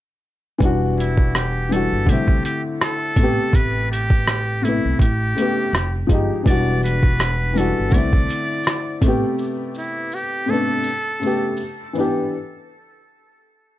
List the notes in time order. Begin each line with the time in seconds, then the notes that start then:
0.58 E1 E3 G3, kick, closed hi-hat
0.63 D4 F#4
0.99 E4, closed hi-hat
1.17 kick
1.35 G4, cross-stick, closed hi-hat
1.69 E3 G3 A4, closed hi-hat
1.73 D4 F#4
1.92 G1
2.06 C2 D3 A3, kick, closed hi-hat
2.10 C4 E4 G4
2.28 kick
2.45 G4, closed hi-hat
2.81 A4, cross-stick, closed hi-hat
3.16 A1 C3 A3, kick, closed hi-hat
3.21 B3 G4
3.53 A1 B4, kick, closed hi-hat
3.92 G4, closed hi-hat
4.10 kick
4.28 cross-stick, closed hi-hat
4.62 C3 A3 E4, closed hi-hat
4.66 B3 E4
4.85 C2
4.99 A1 G4, kick, closed hi-hat
5.35 C#3 A3, closed hi-hat
5.39 B3 G4
5.73 F1, cross-stick, closed hi-hat
6.07 G1 F3 G#3, kick, closed hi-hat
6.11 D#4 G4
6.43 E1 E3 G3, kick, closed hi-hat, maracas
6.48 D4 F#4 D5
6.82 B4, closed hi-hat, maracas
7.03 kick
7.19 cross-stick, closed hi-hat, maracas
7.53 E3 G3, maracas
7.58 D4 F#4 A4, closed hi-hat
7.78 G1
7.90 C2 D3 A3, kick, maracas
7.94 C4 E4 D5, closed hi-hat
8.13 kick
8.29 closed hi-hat, maracas
8.64 cross-stick, closed hi-hat, maracas
9.01 A1 C3 A3, kick, closed hi-hat, maracas
9.06 B3 G4
9.39 maracas
9.75 E4, maracas
10.12 G4, maracas
10.46 C3 A3, maracas
10.50 B3 D4 A4
10.84 maracas
11.20 C#3 A3, maracas
11.24 B3 G4
11.57 maracas
11.93 E3 B3, maracas
11.98 D4 G4